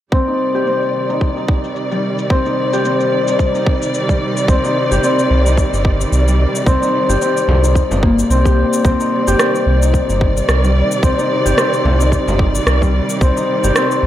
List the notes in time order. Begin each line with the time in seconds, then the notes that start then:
0.12 C3 D#3 G3 C4 D5, kick
0.28 D#4, cabasa
0.55 G4, cabasa
0.67 C4, cabasa
0.82 cabasa
1.09 D#4, cabasa
1.21 kick, cabasa
1.37 D#4, cabasa
1.48 kick
1.64 cabasa
1.76 cabasa
1.91 G3, cabasa
2.18 cabasa
2.30 C4, kick, cabasa
2.46 D#4, cabasa
2.73 G4, cabasa
2.85 C4, cabasa
3.00 cabasa
3.28 D#4, cabasa
3.39 kick, cabasa
3.55 D#4, cabasa
3.67 kick
3.82 cabasa
3.94 cabasa
4.09 G3, kick, cabasa
4.37 cabasa
4.48 C2 C4, kick, cabasa
4.64 D#4, cabasa
4.91 G1 G4, cabasa
5.03 C4, cabasa
5.19 cabasa
5.30 C2
5.46 D#4, cabasa
5.58 kick, cabasa
5.73 G1 D#4, cabasa
5.85 kick
6.01 cabasa
6.12 C2, cabasa
6.28 G3, cabasa
6.55 cabasa
6.66 C2 C4, kick, cabasa
6.82 D#4, cabasa
7.09 G1 G4, cabasa
7.21 C4, cabasa
7.37 cabasa
7.48 C2, frame drum
7.64 D#4, cabasa
7.75 kick, cabasa
7.91 G1 D#4, frame drum, cabasa
8.03 A#3, kick
8.19 cabasa
8.30 C2 C4, cabasa
8.45 G4, kick, cabasa
8.73 cabasa
8.85 C2 C3 D#3 G3 C4 D5, kick, cabasa
9.00 D#4, cabasa
9.27 G1 G4, cabasa
9.39 C4, cross-stick, cabasa
9.55 cabasa
9.66 C2
9.82 D#4, cabasa
9.94 kick, cabasa
10.09 G1 D#4, cabasa
10.21 kick
10.37 cabasa
10.48 C2, cross-stick, cabasa
10.64 G3, cabasa
10.92 cabasa
11.03 C2 C4, kick, cabasa
11.18 D#4, cabasa
11.45 G1 G4, cabasa
11.57 C4, cross-stick, cabasa
11.73 cabasa
11.85 C2, frame drum
12.00 D#4, cabasa
12.12 kick, cabasa
12.27 G1 D#4, frame drum, cabasa
12.39 kick
12.55 cabasa
12.66 C2, cross-stick, cabasa
12.82 G3, kick, cabasa
13.10 cabasa
13.21 C2 C4, kick, cabasa
13.37 D#4, cabasa
13.64 G1 G4, cabasa
13.75 C4, cross-stick, cabasa
13.91 cabasa
14.03 C2